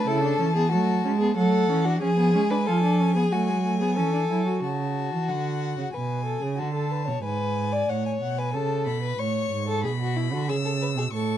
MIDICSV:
0, 0, Header, 1, 5, 480
1, 0, Start_track
1, 0, Tempo, 650054
1, 1491, Time_signature, 4, 2, 24, 8
1, 8399, End_track
2, 0, Start_track
2, 0, Title_t, "Violin"
2, 0, Program_c, 0, 40
2, 0, Note_on_c, 0, 81, 88
2, 984, Note_off_c, 0, 81, 0
2, 1016, Note_on_c, 0, 78, 79
2, 1483, Note_off_c, 0, 78, 0
2, 1492, Note_on_c, 0, 80, 86
2, 3392, Note_off_c, 0, 80, 0
2, 3422, Note_on_c, 0, 81, 62
2, 3901, Note_on_c, 0, 78, 64
2, 3912, Note_off_c, 0, 81, 0
2, 4379, Note_off_c, 0, 78, 0
2, 4383, Note_on_c, 0, 80, 62
2, 4863, Note_on_c, 0, 81, 66
2, 4874, Note_off_c, 0, 80, 0
2, 5340, Note_off_c, 0, 81, 0
2, 5344, Note_on_c, 0, 80, 69
2, 5826, Note_on_c, 0, 78, 60
2, 5837, Note_off_c, 0, 80, 0
2, 5944, Note_off_c, 0, 78, 0
2, 5949, Note_on_c, 0, 80, 56
2, 5996, Note_off_c, 0, 80, 0
2, 6071, Note_on_c, 0, 78, 67
2, 6190, Note_on_c, 0, 80, 64
2, 6202, Note_off_c, 0, 78, 0
2, 6311, Note_on_c, 0, 81, 68
2, 6322, Note_off_c, 0, 80, 0
2, 6543, Note_off_c, 0, 81, 0
2, 6547, Note_on_c, 0, 83, 66
2, 6786, Note_on_c, 0, 85, 72
2, 6797, Note_off_c, 0, 83, 0
2, 7260, Note_off_c, 0, 85, 0
2, 7265, Note_on_c, 0, 83, 75
2, 7744, Note_on_c, 0, 88, 74
2, 7755, Note_off_c, 0, 83, 0
2, 8215, Note_off_c, 0, 88, 0
2, 8219, Note_on_c, 0, 85, 73
2, 8399, Note_off_c, 0, 85, 0
2, 8399, End_track
3, 0, Start_track
3, 0, Title_t, "Violin"
3, 0, Program_c, 1, 40
3, 57, Note_on_c, 1, 69, 87
3, 408, Note_off_c, 1, 69, 0
3, 413, Note_on_c, 1, 68, 85
3, 526, Note_off_c, 1, 68, 0
3, 530, Note_on_c, 1, 66, 86
3, 883, Note_off_c, 1, 66, 0
3, 889, Note_on_c, 1, 68, 80
3, 1004, Note_off_c, 1, 68, 0
3, 1009, Note_on_c, 1, 69, 86
3, 1366, Note_on_c, 1, 66, 83
3, 1377, Note_off_c, 1, 69, 0
3, 1480, Note_off_c, 1, 66, 0
3, 1484, Note_on_c, 1, 68, 93
3, 1849, Note_on_c, 1, 71, 84
3, 1860, Note_off_c, 1, 68, 0
3, 1970, Note_on_c, 1, 69, 76
3, 1982, Note_off_c, 1, 71, 0
3, 2328, Note_off_c, 1, 69, 0
3, 2332, Note_on_c, 1, 68, 78
3, 2453, Note_on_c, 1, 66, 74
3, 2464, Note_off_c, 1, 68, 0
3, 2807, Note_off_c, 1, 66, 0
3, 2811, Note_on_c, 1, 68, 70
3, 2926, Note_off_c, 1, 68, 0
3, 2930, Note_on_c, 1, 69, 76
3, 3409, Note_off_c, 1, 69, 0
3, 3419, Note_on_c, 1, 66, 68
3, 4381, Note_on_c, 1, 71, 58
3, 4392, Note_off_c, 1, 66, 0
3, 4616, Note_off_c, 1, 71, 0
3, 4620, Note_on_c, 1, 69, 56
3, 4739, Note_on_c, 1, 68, 54
3, 4750, Note_off_c, 1, 69, 0
3, 4856, Note_off_c, 1, 68, 0
3, 4860, Note_on_c, 1, 66, 58
3, 4976, Note_off_c, 1, 66, 0
3, 4981, Note_on_c, 1, 69, 55
3, 5102, Note_on_c, 1, 71, 63
3, 5113, Note_off_c, 1, 69, 0
3, 5218, Note_off_c, 1, 71, 0
3, 5223, Note_on_c, 1, 73, 61
3, 5342, Note_off_c, 1, 73, 0
3, 5346, Note_on_c, 1, 71, 77
3, 5704, Note_on_c, 1, 74, 73
3, 5716, Note_off_c, 1, 71, 0
3, 5824, Note_on_c, 1, 73, 72
3, 5835, Note_off_c, 1, 74, 0
3, 6189, Note_on_c, 1, 71, 70
3, 6200, Note_off_c, 1, 73, 0
3, 6307, Note_off_c, 1, 71, 0
3, 6311, Note_on_c, 1, 69, 70
3, 6659, Note_off_c, 1, 69, 0
3, 6668, Note_on_c, 1, 71, 67
3, 6789, Note_on_c, 1, 73, 78
3, 6800, Note_off_c, 1, 71, 0
3, 7145, Note_off_c, 1, 73, 0
3, 7150, Note_on_c, 1, 69, 77
3, 7263, Note_off_c, 1, 69, 0
3, 7268, Note_on_c, 1, 68, 68
3, 7314, Note_off_c, 1, 68, 0
3, 7388, Note_on_c, 1, 66, 70
3, 7507, Note_on_c, 1, 64, 62
3, 7518, Note_off_c, 1, 66, 0
3, 7624, Note_off_c, 1, 64, 0
3, 7628, Note_on_c, 1, 66, 66
3, 7740, Note_off_c, 1, 66, 0
3, 7744, Note_on_c, 1, 68, 62
3, 7791, Note_off_c, 1, 68, 0
3, 7863, Note_on_c, 1, 69, 64
3, 7910, Note_off_c, 1, 69, 0
3, 7985, Note_on_c, 1, 71, 65
3, 8032, Note_off_c, 1, 71, 0
3, 8104, Note_on_c, 1, 68, 64
3, 8151, Note_off_c, 1, 68, 0
3, 8221, Note_on_c, 1, 69, 64
3, 8399, Note_off_c, 1, 69, 0
3, 8399, End_track
4, 0, Start_track
4, 0, Title_t, "Viola"
4, 0, Program_c, 2, 41
4, 56, Note_on_c, 2, 64, 75
4, 171, Note_off_c, 2, 64, 0
4, 176, Note_on_c, 2, 62, 69
4, 290, Note_off_c, 2, 62, 0
4, 294, Note_on_c, 2, 61, 71
4, 342, Note_off_c, 2, 61, 0
4, 415, Note_on_c, 2, 59, 70
4, 531, Note_off_c, 2, 59, 0
4, 535, Note_on_c, 2, 57, 74
4, 769, Note_off_c, 2, 57, 0
4, 773, Note_on_c, 2, 61, 71
4, 821, Note_off_c, 2, 61, 0
4, 892, Note_on_c, 2, 59, 68
4, 1009, Note_off_c, 2, 59, 0
4, 1013, Note_on_c, 2, 57, 73
4, 1248, Note_on_c, 2, 61, 68
4, 1259, Note_off_c, 2, 57, 0
4, 1368, Note_on_c, 2, 62, 62
4, 1379, Note_off_c, 2, 61, 0
4, 1485, Note_off_c, 2, 62, 0
4, 1490, Note_on_c, 2, 61, 68
4, 1538, Note_off_c, 2, 61, 0
4, 1610, Note_on_c, 2, 59, 65
4, 1724, Note_off_c, 2, 59, 0
4, 1728, Note_on_c, 2, 61, 70
4, 1777, Note_off_c, 2, 61, 0
4, 1849, Note_on_c, 2, 62, 63
4, 1898, Note_off_c, 2, 62, 0
4, 1972, Note_on_c, 2, 65, 68
4, 2088, Note_off_c, 2, 65, 0
4, 2092, Note_on_c, 2, 62, 64
4, 2215, Note_on_c, 2, 61, 65
4, 2226, Note_off_c, 2, 62, 0
4, 2330, Note_off_c, 2, 61, 0
4, 2334, Note_on_c, 2, 59, 62
4, 2382, Note_off_c, 2, 59, 0
4, 2451, Note_on_c, 2, 57, 67
4, 2573, Note_on_c, 2, 56, 61
4, 2584, Note_off_c, 2, 57, 0
4, 2689, Note_off_c, 2, 56, 0
4, 2694, Note_on_c, 2, 57, 60
4, 2812, Note_on_c, 2, 59, 57
4, 2823, Note_off_c, 2, 57, 0
4, 2930, Note_on_c, 2, 61, 61
4, 2941, Note_off_c, 2, 59, 0
4, 3048, Note_off_c, 2, 61, 0
4, 3052, Note_on_c, 2, 62, 58
4, 3102, Note_off_c, 2, 62, 0
4, 3178, Note_on_c, 2, 64, 62
4, 3292, Note_off_c, 2, 64, 0
4, 3297, Note_on_c, 2, 66, 53
4, 3417, Note_off_c, 2, 66, 0
4, 8399, End_track
5, 0, Start_track
5, 0, Title_t, "Cello"
5, 0, Program_c, 3, 42
5, 56, Note_on_c, 3, 49, 77
5, 291, Note_off_c, 3, 49, 0
5, 297, Note_on_c, 3, 52, 75
5, 535, Note_on_c, 3, 54, 74
5, 546, Note_off_c, 3, 52, 0
5, 771, Note_off_c, 3, 54, 0
5, 775, Note_on_c, 3, 56, 78
5, 1009, Note_off_c, 3, 56, 0
5, 1012, Note_on_c, 3, 54, 76
5, 1246, Note_off_c, 3, 54, 0
5, 1250, Note_on_c, 3, 52, 68
5, 1485, Note_off_c, 3, 52, 0
5, 1490, Note_on_c, 3, 53, 76
5, 1730, Note_on_c, 3, 56, 69
5, 1741, Note_off_c, 3, 53, 0
5, 1970, Note_on_c, 3, 53, 68
5, 1981, Note_off_c, 3, 56, 0
5, 2447, Note_off_c, 3, 53, 0
5, 2451, Note_on_c, 3, 54, 66
5, 2934, Note_on_c, 3, 52, 65
5, 2945, Note_off_c, 3, 54, 0
5, 3174, Note_off_c, 3, 52, 0
5, 3178, Note_on_c, 3, 54, 62
5, 3417, Note_off_c, 3, 54, 0
5, 3420, Note_on_c, 3, 49, 69
5, 3783, Note_on_c, 3, 52, 60
5, 3794, Note_off_c, 3, 49, 0
5, 3902, Note_on_c, 3, 50, 68
5, 3913, Note_off_c, 3, 52, 0
5, 4260, Note_off_c, 3, 50, 0
5, 4264, Note_on_c, 3, 49, 59
5, 4312, Note_off_c, 3, 49, 0
5, 4383, Note_on_c, 3, 47, 67
5, 4736, Note_off_c, 3, 47, 0
5, 4744, Note_on_c, 3, 49, 65
5, 4864, Note_on_c, 3, 50, 72
5, 4875, Note_off_c, 3, 49, 0
5, 5224, Note_on_c, 3, 47, 69
5, 5235, Note_off_c, 3, 50, 0
5, 5341, Note_off_c, 3, 47, 0
5, 5346, Note_on_c, 3, 44, 64
5, 5817, Note_off_c, 3, 44, 0
5, 5827, Note_on_c, 3, 45, 60
5, 6062, Note_off_c, 3, 45, 0
5, 6067, Note_on_c, 3, 47, 64
5, 6305, Note_on_c, 3, 49, 69
5, 6316, Note_off_c, 3, 47, 0
5, 6546, Note_on_c, 3, 47, 62
5, 6557, Note_off_c, 3, 49, 0
5, 6780, Note_off_c, 3, 47, 0
5, 6784, Note_on_c, 3, 45, 64
5, 7018, Note_off_c, 3, 45, 0
5, 7024, Note_on_c, 3, 44, 66
5, 7262, Note_on_c, 3, 47, 79
5, 7273, Note_off_c, 3, 44, 0
5, 7622, Note_on_c, 3, 50, 74
5, 7633, Note_off_c, 3, 47, 0
5, 7739, Note_on_c, 3, 49, 76
5, 7750, Note_off_c, 3, 50, 0
5, 8097, Note_on_c, 3, 47, 74
5, 8108, Note_off_c, 3, 49, 0
5, 8214, Note_off_c, 3, 47, 0
5, 8218, Note_on_c, 3, 45, 77
5, 8399, Note_off_c, 3, 45, 0
5, 8399, End_track
0, 0, End_of_file